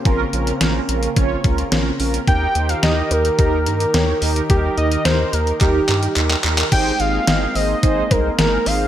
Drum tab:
CC |----------------|----------------|----------------|x---------------|
HH |x-xxx-xxx-xxx-ox|x-xxx-xxx-xxx-ox|x-xxx-xxx-xxx-xx|x-x-x-o-x-x-x-o-|
CP |----------------|----------------|--------x-x-xxxx|----------------|
SD |----o-------o---|----o-------o---|----o-----------|----o-------o---|
BD |o-------o-o-----|o-------o-------|o-------o-------|o-------o-o-----|